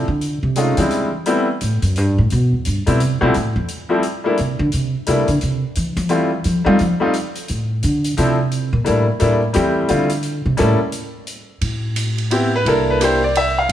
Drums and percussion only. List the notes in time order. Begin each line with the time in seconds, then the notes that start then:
0.21 closed hi-hat
0.56 closed hi-hat
0.77 closed hi-hat
0.91 closed hi-hat
1.26 closed hi-hat
1.61 closed hi-hat
1.82 closed hi-hat
1.96 closed hi-hat
2.30 closed hi-hat
2.65 closed hi-hat
2.87 closed hi-hat
3.00 closed hi-hat
3.34 closed hi-hat
3.68 closed hi-hat
4.03 closed hi-hat
4.37 closed hi-hat
4.72 closed hi-hat
5.06 closed hi-hat
5.28 closed hi-hat
5.41 closed hi-hat
5.75 closed hi-hat
5.97 closed hi-hat
6.09 closed hi-hat
6.44 closed hi-hat
6.79 closed hi-hat
7.14 closed hi-hat
7.35 closed hi-hat
7.48 closed hi-hat
7.83 closed hi-hat
8.04 closed hi-hat
8.17 closed hi-hat
8.51 closed hi-hat
8.86 closed hi-hat
9.20 closed hi-hat
9.54 closed hi-hat
9.88 closed hi-hat
10.09 closed hi-hat
10.23 closed hi-hat
10.57 closed hi-hat
10.92 closed hi-hat
11.27 closed hi-hat
11.61 ride
11.96 hi-hat pedal, ride
12.18 ride
12.31 ride
12.66 ride
13.01 hi-hat pedal, ride
13.35 ride